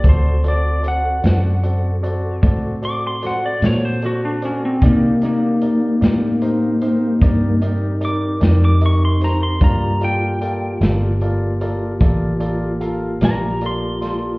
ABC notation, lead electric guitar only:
X:1
M:12/8
L:1/16
Q:3/8=50
K:Gm
V:1 name="Lead electric guitar"
c2 d2 ^f8 z2 d' c' f d ^c =c ^F D ^C =C | B,2 B,12 z2 d'2 z d' ^c' =c' b c' | b2 g8 z8 b2 c'4 |]